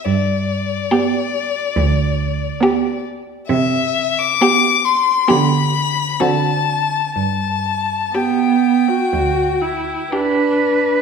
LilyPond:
<<
  \new Staff \with { instrumentName = "Violin" } { \time 4/4 \key g \major \tempo 4 = 66 d''2.~ d''8 r8 | e''8. d'''8. c'''8 b''4 a''4 | a''4 g''2 r4 | }
  \new Staff \with { instrumentName = "Violin" } { \time 4/4 \key g \major r4 g'4 r4 g'4 | r4 g'4 g'4 fis'4 | r4 g'4 r4 g'4 | }
  \new Staff \with { instrumentName = "Viola" } { \time 4/4 \key g \major r4 b4 r4 b4 | r4 b4 b4 c'4 | r4 b8. fis'8. e'8 d'4 | }
  \new Staff \with { instrumentName = "Cello" } { \clef bass \time 4/4 \key g \major g,4 r4 d,4 r4 | c4 r4 d4 d4 | g,4 r4 d,4 b'4 | }
>>